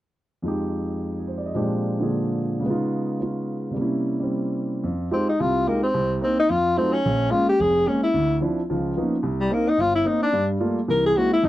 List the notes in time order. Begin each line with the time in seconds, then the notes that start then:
0.42 F2 F3 G#3 D#4
0.48 G4
1.19 G#4
1.28 C5
1.37 D5
1.46 D#5
1.54 A#2 F3 G#3 C4 D4 G4
1.99 D3 A#3 D4 F4 G#4
2.59 C#3 G#3
2.65 B3 D#4
2.70 F4
3.20 B3 C#4 F4
3.71 C3 G3
3.76 A#3 C#4
3.81 E4
4.20 G3 C4
4.84 F2
5.11 G#3 C4 D#4 F4 G4
5.29 D#4
5.40 C2 C3 F4
5.66 G#3 A#3 D#4 F4 G4
5.83 C4
5.94 C2
6.21 A#3 C4 D#4
6.39 D#4
6.50 F2 F4
6.77 F#3 A3 C4 D#4 F4
6.93 C#4
7.05 A#1
7.30 G#3 A#3 C#4 F4
7.49 G4
7.60 F1 G#4
7.87 G#3 A#3 C#4
8.03 E4
8.14 D2
8.41 F3 C4 D4 E4
8.70 C#2 F3
8.97 F3 A#3 B3 C#4 D#4
9.23 C2
9.40 G3
9.50 A#3 C4 D#4
9.69 D#4
9.78 G1 F4
9.95 E4
10.05 A#3 C4 D#4
10.22 D4
10.33 G2 G3
10.60 G3 A3 A#3 F4
10.88 C2 E3 A#4
11.06 G#4
11.16 G#3 A#3 C4 E4 F#4
11.33 E4
11.43 F2 F3 D#4